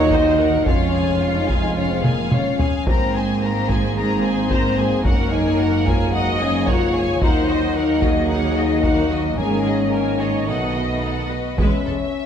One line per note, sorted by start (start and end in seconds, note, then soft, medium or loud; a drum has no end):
0.00 0.62 D#2 medium
0.00 0.62 A#2 medium
0.00 0.62 F#3 medium
0.00 0.64 D#4 medium
0.00 0.12 F#4 soft
0.00 0.12 A#4 soft
0.00 0.11 C#5 medium
0.00 0.11 F#5 soft
0.10 0.38 F#4 medium
0.10 0.38 A#4 soft
0.10 0.39 C5 medium
0.10 0.38 D#5 soft
0.10 taiko medium
0.38 0.66 F#4 soft
0.38 0.66 A#4 soft
0.38 0.67 A#4 medium
0.38 0.66 F#5 soft
0.65 2.66 F1 medium
0.65 2.67 F2 medium
0.65 2.56 G#2 medium
0.65 2.56 G#3 medium
0.65 1.35 C#4 medium
0.65 2.60 F4 medium
0.65 0.92 F4 soft
0.65 0.92 C#5 soft
0.65 0.91 F5 soft
0.65 taiko medium
0.94 1.22 G#4 soft
0.94 1.22 F5 soft
0.94 1.21 G#5 soft
1.21 1.49 F4 soft
1.21 1.49 C#5 soft
1.21 1.49 F5 soft
1.36 1.49 D#4 medium
1.48 1.63 F4 medium
1.48 1.76 G#4 soft
1.48 1.76 F5 soft
1.48 1.77 G#5 soft
1.48 taiko medium
1.62 1.76 D#4 medium
1.76 1.90 C#4 medium
1.76 2.02 F4 soft
1.76 2.03 C#5 soft
1.76 2.02 F5 soft
1.91 2.04 C4 medium
2.04 2.32 A#3 medium
2.04 2.32 G#4 soft
2.04 2.32 F5 soft
2.04 2.32 G#5 soft
2.04 taiko mid medium
2.31 2.86 C#4 medium
2.31 2.60 F4 soft
2.31 2.60 C#5 soft
2.31 2.59 F5 soft
2.31 taiko mid medium
2.59 2.87 G#4 soft
2.59 2.87 F5 soft
2.59 2.87 G#5 soft
2.59 taiko low medium
2.86 5.00 G#1 medium
2.86 5.01 G#2 medium
2.86 7.18 G#2 soft
2.86 7.18 A#3 soft
2.86 3.79 C4 medium
2.86 3.13 A#4 soft
2.86 3.13 C5 soft
2.86 3.13 A#5 soft
2.86 taiko medium
3.14 3.42 G#4 soft
3.14 3.42 C5 soft
3.14 3.41 G#5 soft
3.43 3.70 A#4 soft
3.43 3.67 C5 soft
3.43 3.69 A#5 soft
3.68 3.96 G#4 soft
3.68 3.96 C5 soft
3.68 3.97 G#5 soft
3.68 taiko medium
3.96 5.02 C4 medium
3.96 4.47 G#4 medium
3.96 4.22 A#4 soft
3.96 4.22 C5 soft
3.96 4.21 A#5 soft
4.23 4.51 G#4 soft
4.23 4.51 C5 soft
4.23 4.50 G#5 soft
4.51 4.78 A#4 soft
4.51 4.78 C5 soft
4.51 4.77 C5 soft
4.51 4.78 A#5 soft
4.51 taiko medium
4.77 5.05 G#4 soft
4.77 5.05 C5 soft
4.77 5.04 G#5 soft
5.04 7.17 F#1 medium
5.04 7.18 F#2 medium
5.04 5.31 C#4 medium
5.04 5.30 F#4 soft
5.04 6.13 A#4 medium
5.04 5.30 A#4 soft
5.04 5.30 F#5 soft
5.04 taiko medium
5.31 5.85 D#4 medium
5.31 5.60 G#4 soft
5.31 5.59 C#5 soft
5.31 5.59 G#5 soft
5.58 5.87 F#4 soft
5.58 5.87 A#4 soft
5.58 5.86 F#5 soft
5.85 6.13 F4 medium
5.85 6.14 G#4 soft
5.85 6.14 C#5 soft
5.85 6.13 G#5 soft
5.85 taiko medium
6.12 6.40 F#4 medium
6.12 6.40 F#4 soft
6.12 6.40 A#4 soft
6.12 6.67 D#5 medium
6.12 6.39 F#5 soft
6.40 6.67 C#4 medium
6.40 6.68 G#4 soft
6.40 6.68 C#5 soft
6.40 6.67 G#5 soft
6.66 7.23 F4 medium
6.66 6.94 F#4 soft
6.66 6.94 A#4 soft
6.66 7.21 C#5 medium
6.66 6.94 F#5 soft
6.66 taiko medium
6.94 7.22 G#4 soft
6.94 7.22 C#5 soft
6.94 7.21 G#5 soft
7.21 9.34 D#2 medium
7.21 9.35 F#3 medium
7.21 10.45 A#3 medium
7.21 7.47 D#4 soft
7.21 8.30 D#4 medium
7.21 7.46 A#4 soft
7.21 7.74 C5 medium
7.21 7.46 F#5 soft
7.21 taiko medium
7.48 7.76 F#4 soft
7.48 7.75 D#5 soft
7.74 8.02 D#4 soft
7.74 8.02 A#4 soft
7.74 8.03 A#4 soft
7.74 8.02 F#5 soft
8.01 8.29 F#4 soft
8.01 8.84 G#4 medium
8.01 8.29 D#5 soft
8.01 taiko medium
8.29 8.55 D#4 soft
8.29 9.37 D#4 medium
8.29 8.55 A#4 soft
8.29 8.54 F#5 soft
8.56 8.84 F#4 soft
8.56 8.84 D#5 soft
8.83 9.11 D#4 soft
8.83 9.37 F#4 soft
8.83 9.11 A#4 soft
8.83 9.10 F#5 soft
8.83 taiko medium
9.09 9.38 F#4 soft
9.09 9.37 D#5 soft
9.37 10.48 G#1 soft
9.37 10.48 G#2 medium
9.37 11.28 D#3 medium
9.37 10.49 C#4 medium
9.37 9.92 G#4 soft
9.37 9.63 A#4 soft
9.37 9.63 G#5 soft
9.65 9.93 G#4 soft
9.65 9.93 D#5 soft
9.91 10.20 A#4 soft
9.91 10.21 G#5 soft
10.20 10.48 G#4 soft
10.20 10.48 C#5 soft
10.20 10.48 D#5 soft
10.47 11.39 B1 soft
10.47 11.38 B2 soft
10.47 11.31 A3 soft
10.47 11.30 B3 soft
10.47 10.73 D#4 soft
10.47 10.73 A4 soft
10.47 11.31 D#5 soft
10.47 10.73 F#5 soft
10.74 11.03 F#4 soft
10.74 11.03 B4 soft
10.74 11.03 D#5 soft
11.02 11.30 D#4 soft
11.02 11.30 A4 soft
11.02 11.31 F#5 soft
11.30 11.58 F#4 soft
11.30 11.58 B4 soft
11.30 11.58 D#5 soft
11.57 11.65 E1 medium
11.57 11.67 E2 medium
11.57 11.84 G#3 soft
11.57 12.26 C#4 medium
11.57 11.84 B4 medium
11.57 12.26 E5 soft
11.57 taiko medium
11.86 11.94 E1 soft
11.86 11.94 E2 soft
11.86 11.94 G#3 soft
11.86 11.94 A4 soft